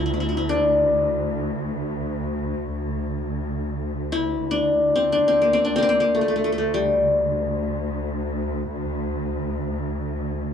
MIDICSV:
0, 0, Header, 1, 3, 480
1, 0, Start_track
1, 0, Tempo, 500000
1, 10115, End_track
2, 0, Start_track
2, 0, Title_t, "Qanun"
2, 0, Program_c, 0, 107
2, 55, Note_on_c, 0, 64, 46
2, 127, Note_off_c, 0, 64, 0
2, 131, Note_on_c, 0, 64, 38
2, 191, Note_off_c, 0, 64, 0
2, 194, Note_on_c, 0, 64, 51
2, 272, Note_off_c, 0, 64, 0
2, 276, Note_on_c, 0, 64, 43
2, 351, Note_off_c, 0, 64, 0
2, 355, Note_on_c, 0, 64, 54
2, 472, Note_on_c, 0, 62, 65
2, 1706, Note_off_c, 0, 64, 0
2, 3110, Note_off_c, 0, 62, 0
2, 3957, Note_on_c, 0, 64, 76
2, 4329, Note_on_c, 0, 62, 72
2, 4758, Note_on_c, 0, 60, 64
2, 4915, Note_off_c, 0, 62, 0
2, 4919, Note_on_c, 0, 62, 68
2, 5064, Note_off_c, 0, 60, 0
2, 5068, Note_on_c, 0, 60, 63
2, 5199, Note_on_c, 0, 58, 64
2, 5308, Note_off_c, 0, 60, 0
2, 5308, Note_off_c, 0, 64, 0
2, 5312, Note_on_c, 0, 60, 68
2, 5417, Note_off_c, 0, 62, 0
2, 5421, Note_on_c, 0, 62, 67
2, 5524, Note_off_c, 0, 60, 0
2, 5528, Note_on_c, 0, 60, 77
2, 5548, Note_off_c, 0, 58, 0
2, 5552, Note_on_c, 0, 58, 55
2, 5589, Note_off_c, 0, 60, 0
2, 5593, Note_on_c, 0, 60, 74
2, 5650, Note_off_c, 0, 60, 0
2, 5653, Note_on_c, 0, 60, 67
2, 5758, Note_off_c, 0, 58, 0
2, 5762, Note_on_c, 0, 58, 65
2, 5900, Note_on_c, 0, 57, 51
2, 5958, Note_off_c, 0, 58, 0
2, 5961, Note_off_c, 0, 57, 0
2, 5964, Note_on_c, 0, 57, 42
2, 6027, Note_off_c, 0, 57, 0
2, 6031, Note_on_c, 0, 57, 47
2, 6100, Note_off_c, 0, 57, 0
2, 6104, Note_on_c, 0, 57, 45
2, 6181, Note_off_c, 0, 57, 0
2, 6185, Note_on_c, 0, 57, 51
2, 6259, Note_off_c, 0, 57, 0
2, 6263, Note_on_c, 0, 57, 46
2, 6314, Note_off_c, 0, 57, 0
2, 6318, Note_on_c, 0, 57, 50
2, 6471, Note_on_c, 0, 55, 61
2, 6854, Note_off_c, 0, 62, 0
2, 7192, Note_off_c, 0, 60, 0
2, 8021, Note_off_c, 0, 57, 0
2, 9006, Note_off_c, 0, 55, 0
2, 10115, End_track
3, 0, Start_track
3, 0, Title_t, "Cello section"
3, 0, Program_c, 1, 48
3, 0, Note_on_c, 1, 38, 51
3, 5028, Note_off_c, 1, 38, 0
3, 5039, Note_on_c, 1, 38, 49
3, 10115, Note_off_c, 1, 38, 0
3, 10115, End_track
0, 0, End_of_file